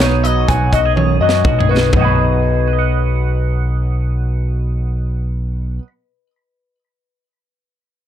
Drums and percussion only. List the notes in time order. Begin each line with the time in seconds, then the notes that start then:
0.00 snare, closed hi-hat
0.25 closed hi-hat
0.49 kick, closed hi-hat
0.73 kick, closed hi-hat
0.97 high tom
1.29 snare
1.45 kick, mid tom
1.60 floor tom
1.77 snare
1.93 kick, floor tom